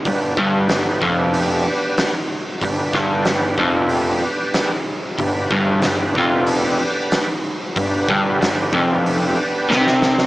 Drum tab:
HH |o---o---o---o---|o---o---o---o---|o---o---o---o---|o---o---o-------|
SD |----o-------o---|--o-o-------o---|----o-------o---|----o-------oooo|
BD |o-o---o---------|o-o---o---------|o-o---o---------|o-o---o---------|